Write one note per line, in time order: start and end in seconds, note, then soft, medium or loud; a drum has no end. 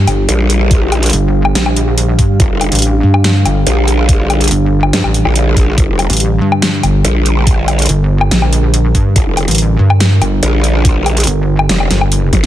0.00 12.46 D3 medium
0.00 12.46 G3 medium
0.00 12.46 D4 medium
0.00 12.46 G4 medium
0.00 5.76 F5 medium
0.07 0.27 G1 loud
0.07 closed hi-hat medium
0.07 low woodblock medium
0.29 1.11 A#1 loud
0.29 closed hi-hat medium
0.50 closed hi-hat medium
0.71 kick loud
0.71 closed hi-hat medium
0.92 closed hi-hat medium
0.92 low woodblock medium
1.03 closed hi-hat medium
1.06 closed hi-hat medium
1.10 1.54 G1 loud
1.10 closed hi-hat medium
1.13 closed hi-hat medium
1.45 low woodblock medium
1.55 2.17 A#1 loud
1.55 snare loud
1.55 closed hi-hat medium
1.66 low woodblock medium
1.76 closed hi-hat medium
1.98 closed hi-hat medium
2.19 2.38 G2 loud
2.19 kick medium
2.19 closed hi-hat medium
2.40 2.49 G1 loud
2.40 kick loud
2.40 closed hi-hat medium
2.51 2.70 F1 loud
2.61 closed hi-hat medium
2.61 low woodblock medium
2.72 3.02 A1 loud
2.72 closed hi-hat medium
2.75 closed hi-hat medium
2.79 closed hi-hat medium
2.82 closed hi-hat medium
3.03 3.44 G2 loud
3.14 low woodblock medium
3.24 snare loud
3.24 closed hi-hat medium
3.45 3.65 G1 loud
3.45 closed hi-hat medium
3.45 low woodblock medium
3.67 4.49 A#1 loud
3.67 closed hi-hat medium
3.88 closed hi-hat medium
4.09 kick loud
4.09 closed hi-hat medium
4.30 closed hi-hat medium
4.30 low woodblock medium
4.41 closed hi-hat soft
4.44 closed hi-hat medium
4.48 4.92 G1 loud
4.48 closed hi-hat medium
4.51 closed hi-hat medium
4.83 low woodblock medium
4.93 5.02 G2 loud
4.93 snare loud
4.93 closed hi-hat medium
5.04 5.24 A1 loud
5.04 low woodblock medium
5.14 closed hi-hat medium
5.25 5.76 A#1 loud
5.25 low woodblock medium
5.36 closed hi-hat medium
5.57 kick medium
5.57 closed hi-hat medium
5.78 5.87 G1 loud
5.78 12.46 A#4 medium
5.78 kick loud
5.78 closed hi-hat medium
5.89 6.08 F1 loud
5.99 closed hi-hat medium
5.99 low woodblock medium
6.10 6.40 A1 loud
6.10 closed hi-hat soft
6.13 closed hi-hat medium
6.17 closed hi-hat medium
6.20 closed hi-hat medium
6.41 6.82 G2 loud
6.52 low woodblock medium
6.62 snare loud
6.62 closed hi-hat medium
6.83 7.03 G1 loud
6.83 closed hi-hat medium
6.83 low woodblock medium
7.05 7.87 A#1 medium
7.05 closed hi-hat medium
7.26 closed hi-hat medium
7.47 kick loud
7.47 closed hi-hat medium
7.68 closed hi-hat soft
7.68 low woodblock medium
7.79 closed hi-hat soft
7.82 closed hi-hat medium
7.86 8.30 G1 loud
7.86 closed hi-hat medium
7.89 closed hi-hat medium
8.21 low woodblock medium
8.31 8.93 A#1 loud
8.31 snare loud
8.31 closed hi-hat medium
8.42 low woodblock medium
8.53 closed hi-hat medium
8.74 closed hi-hat medium
8.95 9.14 G2 loud
8.95 kick medium
8.95 closed hi-hat medium
9.16 9.25 G1 medium
9.16 kick loud
9.16 closed hi-hat medium
9.27 9.46 F1 loud
9.37 closed hi-hat medium
9.37 low woodblock medium
9.48 9.78 A1 loud
9.48 closed hi-hat soft
9.51 closed hi-hat medium
9.55 closed hi-hat medium
9.58 closed hi-hat medium
9.79 10.20 G2 loud
9.90 low woodblock medium
10.00 snare loud
10.00 closed hi-hat medium
10.21 10.41 G1 loud
10.21 closed hi-hat medium
10.21 low woodblock medium
10.43 11.26 A#1 loud
10.43 closed hi-hat medium
10.64 closed hi-hat medium
10.85 kick loud
10.85 closed hi-hat medium
11.06 closed hi-hat medium
11.06 low woodblock medium
11.17 closed hi-hat soft
11.20 closed hi-hat medium
11.24 11.68 G1 loud
11.24 closed hi-hat medium
11.27 closed hi-hat medium
11.59 low woodblock medium
11.69 11.89 F1 loud
11.69 snare loud
11.69 closed hi-hat medium
11.80 low woodblock medium
11.90 12.31 G1 loud
11.90 snare medium
11.90 closed hi-hat medium
12.01 low woodblock medium
12.12 closed hi-hat medium
12.33 12.46 G1 loud
12.33 kick medium
12.33 closed hi-hat medium
12.33 high tom medium